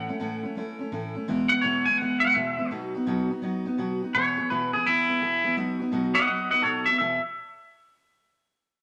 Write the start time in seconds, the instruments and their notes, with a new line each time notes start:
Already playing: clean electric guitar F#5
0.09 steel-string acoustic guitar A3 C#4 E4
0.20 steel-string acoustic guitar A2 E3 A3 C#4 E4
0.43 steel-string acoustic guitar A3 C#4 E4
0.55 steel-string acoustic guitar E3 A3 C#4 E4
0.79 steel-string acoustic guitar A3 C#4 E4
0.92 steel-string acoustic guitar A2 E3 A3 C#4 E4
1.15 steel-string acoustic guitar A3 C#4 E4
1.28 steel-string acoustic guitar E2 B2 E3 G#3 B3 E4
1.49 steel-string acoustic guitar G#3 B3 E4, clean electric guitar F#5
1.53 steel-string acoustic guitar E3
1.61 steel-string acoustic guitar E2 B2 E3 G#3 B3, clean electric guitar C#5
1.66 steel-string acoustic guitar E4
1.86 steel-string acoustic guitar E3 G#3 B3 E4, clean electric guitar G#5
1.98 steel-string acoustic guitar E3 G#3, clean electric guitar F#5
2.02 steel-string acoustic guitar B3 E4
2.20 steel-string acoustic guitar B3 E4, clean electric guitar F#5
2.25 steel-string acoustic guitar E3 G#3
2.34 steel-string acoustic guitar E2 B2 E3 G#3 B3 E4, clean electric guitar E5
2.58 steel-string acoustic guitar E3 G#3 B3 E4
2.71 steel-string acoustic guitar B2 F#3 B3 D#4 F#4
2.95 steel-string acoustic guitar B3 D#4 F#4
3.06 steel-string acoustic guitar B2 F#3 B3 D#4 F#4
3.30 steel-string acoustic guitar B3 D#4 F#4
3.42 steel-string acoustic guitar F#3 B3 D#4 F#4
3.65 steel-string acoustic guitar B3 D#4 F#4
3.78 steel-string acoustic guitar B2 F#3 B3 D#4 F#4
4.02 steel-string acoustic guitar B3 D#4 F#4
4.15 steel-string acoustic guitar E2 B2 E3 B3 E4 G#4, clean electric guitar C#5
4.37 steel-string acoustic guitar E3 B3 E4 G#4
4.50 steel-string acoustic guitar E2 B2 E3 B3 E4 G#4, clean electric guitar B4
4.73 steel-string acoustic guitar E3 B3 E4 G#4, clean electric guitar G#4
4.85 steel-string acoustic guitar E3 B3 E4 G#4, clean electric guitar E4
5.09 steel-string acoustic guitar E3 B3 E4 G#4
5.20 steel-string acoustic guitar E2 B2 E3 B3 E4 G#4
5.44 steel-string acoustic guitar E3 B3 E4 G#4
5.56 steel-string acoustic guitar B2 F#3 B3 D#4 F#4
5.80 steel-string acoustic guitar B3 D#4 F#4
5.92 steel-string acoustic guitar B2 F#3 B3 D#4 F#4
6.14 steel-string acoustic guitar F#4, clean electric guitar D#5 F#5
6.27 steel-string acoustic guitar F#3 B3 D#4 F#4, clean electric guitar D#5 F#5
6.50 steel-string acoustic guitar B3 D#4 F#4, clean electric guitar D#5 F#5
6.62 steel-string acoustic guitar B2 F#3 B3 D#4 F#4, clean electric guitar A4 C#5
6.86 steel-string acoustic guitar D#4 F#4, clean electric guitar E5
6.90 steel-string acoustic guitar B3
6.98 steel-string acoustic guitar E2 B2 E3 B3 E4 G#4, clean electric guitar E5